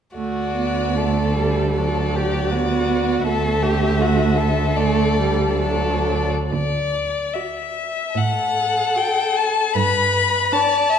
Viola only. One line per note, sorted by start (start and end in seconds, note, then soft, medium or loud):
0.16 0.54 A3 soft
0.55 0.97 B3 soft
0.95 1.36 A3 soft
1.37 1.78 G3 soft
1.77 2.54 F#3 soft
2.52 3.28 B3 soft
3.27 4.77 A3 soft
4.77 5.18 A3 soft
5.20 5.62 G3 soft
5.63 6.31 F#3 soft
7.35 7.96 F#4 soft
8.95 9.55 F#4 soft
10.52 10.99 D4 soft